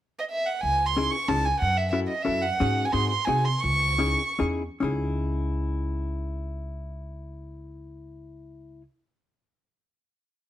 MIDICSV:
0, 0, Header, 1, 4, 480
1, 0, Start_track
1, 0, Key_signature, 4, "minor"
1, 0, Tempo, 328947
1, 924, Time_signature, 3, 2, 24, 8
1, 4294, Tempo, 351700
1, 5734, Tempo, 396040
1, 6214, Tempo, 422833
1, 13141, End_track
2, 0, Start_track
2, 0, Title_t, "Violin"
2, 0, Program_c, 0, 40
2, 277, Note_on_c, 0, 75, 61
2, 363, Note_off_c, 0, 75, 0
2, 447, Note_on_c, 0, 76, 77
2, 683, Note_on_c, 0, 78, 65
2, 705, Note_off_c, 0, 76, 0
2, 888, Note_on_c, 0, 80, 89
2, 910, Note_off_c, 0, 78, 0
2, 1251, Note_on_c, 0, 84, 76
2, 1272, Note_off_c, 0, 80, 0
2, 1620, Note_on_c, 0, 85, 74
2, 1642, Note_off_c, 0, 84, 0
2, 1874, Note_on_c, 0, 81, 86
2, 1896, Note_off_c, 0, 85, 0
2, 2123, Note_on_c, 0, 80, 72
2, 2145, Note_off_c, 0, 81, 0
2, 2332, Note_off_c, 0, 80, 0
2, 2340, Note_on_c, 0, 78, 90
2, 2589, Note_on_c, 0, 76, 61
2, 2611, Note_off_c, 0, 78, 0
2, 2764, Note_off_c, 0, 76, 0
2, 2773, Note_on_c, 0, 76, 68
2, 2908, Note_off_c, 0, 76, 0
2, 3040, Note_on_c, 0, 75, 62
2, 3243, Note_on_c, 0, 76, 78
2, 3265, Note_off_c, 0, 75, 0
2, 3536, Note_on_c, 0, 78, 79
2, 3558, Note_off_c, 0, 76, 0
2, 4160, Note_on_c, 0, 80, 68
2, 4182, Note_off_c, 0, 78, 0
2, 4266, Note_on_c, 0, 84, 78
2, 4287, Note_off_c, 0, 80, 0
2, 4501, Note_off_c, 0, 84, 0
2, 4509, Note_on_c, 0, 84, 67
2, 4713, Note_on_c, 0, 80, 78
2, 4733, Note_off_c, 0, 84, 0
2, 4983, Note_on_c, 0, 84, 70
2, 5004, Note_off_c, 0, 80, 0
2, 5200, Note_on_c, 0, 85, 93
2, 5220, Note_off_c, 0, 84, 0
2, 6200, Note_off_c, 0, 85, 0
2, 13141, End_track
3, 0, Start_track
3, 0, Title_t, "Hollow-body jazz guitar"
3, 0, Program_c, 1, 26
3, 1409, Note_on_c, 1, 61, 47
3, 1424, Note_on_c, 1, 63, 36
3, 1424, Note_on_c, 1, 68, 55
3, 1432, Note_on_c, 1, 64, 42
3, 1674, Note_off_c, 1, 61, 0
3, 1675, Note_off_c, 1, 63, 0
3, 1681, Note_off_c, 1, 64, 0
3, 1681, Note_off_c, 1, 68, 0
3, 1875, Note_on_c, 1, 61, 58
3, 1881, Note_on_c, 1, 63, 46
3, 1886, Note_on_c, 1, 68, 49
3, 1897, Note_on_c, 1, 64, 46
3, 2145, Note_off_c, 1, 61, 0
3, 2148, Note_off_c, 1, 63, 0
3, 2152, Note_off_c, 1, 64, 0
3, 2152, Note_off_c, 1, 68, 0
3, 2813, Note_on_c, 1, 61, 49
3, 2815, Note_on_c, 1, 66, 46
3, 2822, Note_on_c, 1, 64, 41
3, 2829, Note_on_c, 1, 69, 48
3, 3094, Note_off_c, 1, 61, 0
3, 3096, Note_off_c, 1, 64, 0
3, 3097, Note_off_c, 1, 66, 0
3, 3099, Note_off_c, 1, 69, 0
3, 3279, Note_on_c, 1, 61, 56
3, 3288, Note_on_c, 1, 69, 64
3, 3293, Note_on_c, 1, 64, 38
3, 3296, Note_on_c, 1, 66, 45
3, 3570, Note_off_c, 1, 61, 0
3, 3572, Note_off_c, 1, 64, 0
3, 3573, Note_off_c, 1, 69, 0
3, 3577, Note_off_c, 1, 66, 0
3, 3797, Note_on_c, 1, 61, 64
3, 3804, Note_on_c, 1, 63, 46
3, 3805, Note_on_c, 1, 68, 62
3, 3815, Note_on_c, 1, 66, 49
3, 4200, Note_off_c, 1, 61, 0
3, 4200, Note_off_c, 1, 63, 0
3, 4204, Note_off_c, 1, 68, 0
3, 4205, Note_off_c, 1, 66, 0
3, 4272, Note_on_c, 1, 60, 51
3, 4280, Note_on_c, 1, 63, 56
3, 4290, Note_on_c, 1, 68, 51
3, 4296, Note_on_c, 1, 66, 45
3, 4534, Note_off_c, 1, 60, 0
3, 4540, Note_off_c, 1, 63, 0
3, 4540, Note_off_c, 1, 66, 0
3, 4540, Note_off_c, 1, 68, 0
3, 4743, Note_on_c, 1, 60, 61
3, 4748, Note_on_c, 1, 63, 53
3, 4761, Note_on_c, 1, 66, 49
3, 4765, Note_on_c, 1, 68, 65
3, 5006, Note_off_c, 1, 60, 0
3, 5010, Note_off_c, 1, 63, 0
3, 5012, Note_off_c, 1, 66, 0
3, 5017, Note_off_c, 1, 68, 0
3, 5717, Note_on_c, 1, 61, 52
3, 5720, Note_on_c, 1, 63, 47
3, 5735, Note_on_c, 1, 64, 43
3, 5738, Note_on_c, 1, 68, 56
3, 5983, Note_off_c, 1, 61, 0
3, 5986, Note_off_c, 1, 63, 0
3, 5988, Note_off_c, 1, 64, 0
3, 5993, Note_off_c, 1, 68, 0
3, 6206, Note_on_c, 1, 61, 60
3, 6213, Note_on_c, 1, 63, 52
3, 6218, Note_on_c, 1, 68, 74
3, 6221, Note_on_c, 1, 64, 47
3, 6471, Note_off_c, 1, 61, 0
3, 6471, Note_off_c, 1, 63, 0
3, 6472, Note_off_c, 1, 64, 0
3, 6475, Note_off_c, 1, 68, 0
3, 6679, Note_on_c, 1, 61, 62
3, 6691, Note_on_c, 1, 63, 55
3, 6705, Note_on_c, 1, 64, 58
3, 6722, Note_on_c, 1, 68, 68
3, 11226, Note_off_c, 1, 61, 0
3, 11232, Note_off_c, 1, 63, 0
3, 11239, Note_off_c, 1, 64, 0
3, 11247, Note_off_c, 1, 68, 0
3, 13141, End_track
4, 0, Start_track
4, 0, Title_t, "Upright bass"
4, 0, Program_c, 2, 32
4, 921, Note_on_c, 2, 37, 68
4, 1550, Note_off_c, 2, 37, 0
4, 1872, Note_on_c, 2, 37, 77
4, 2190, Note_off_c, 2, 37, 0
4, 2361, Note_on_c, 2, 42, 85
4, 2989, Note_off_c, 2, 42, 0
4, 3316, Note_on_c, 2, 42, 72
4, 3633, Note_off_c, 2, 42, 0
4, 3807, Note_on_c, 2, 44, 92
4, 4122, Note_off_c, 2, 44, 0
4, 4285, Note_on_c, 2, 44, 74
4, 4588, Note_off_c, 2, 44, 0
4, 4752, Note_on_c, 2, 48, 83
4, 5063, Note_off_c, 2, 48, 0
4, 5242, Note_on_c, 2, 37, 84
4, 5896, Note_off_c, 2, 37, 0
4, 6224, Note_on_c, 2, 40, 73
4, 6533, Note_off_c, 2, 40, 0
4, 6702, Note_on_c, 2, 37, 72
4, 11238, Note_off_c, 2, 37, 0
4, 13141, End_track
0, 0, End_of_file